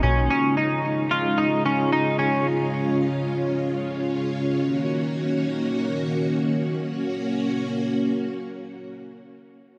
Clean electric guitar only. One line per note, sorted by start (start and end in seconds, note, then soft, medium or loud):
0.03 0.29 C#4 medium
0.30 0.57 C#4 medium
0.57 1.11 D#4 medium
1.11 1.38 F4 medium
1.38 1.65 D#4 medium
1.66 1.92 C#4 medium
1.93 2.18 D#4 medium
2.19 2.46 C#4 medium